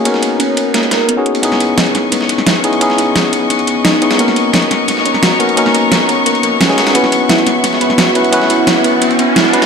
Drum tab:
RD |x-x-x-x-xxx----x|x-x-xxx-x-x-x-xx|x-x-x-x-xxx-x-xx|x-x-xxx-x-x-x-xx|
HH |x-x-x-x-x-x-x-x-|x-x-x-x-x-x-x-x-|x-x-x-x-x-x-x-x-|x-x-x-x-x-x-x-x-|
SD |-o------o-o-----|-o--o-o-oo-oo---|-o--o-------oo-o|-o--o-o-oo-oo---|

RD |x-x-x-x-xxx-x-xx|x-x-xxx-x-x-x-xx|x-x-x-x-xxx-x-xx|
HH |x-x-x-x-x-x-x-x-|x-x-x-x-x-x-x-x-|x-x-x-x-x-x-x-x-|
SD |-o--o-------oooo|-o--o-o-oo-oo---|-o--o-------oo-o|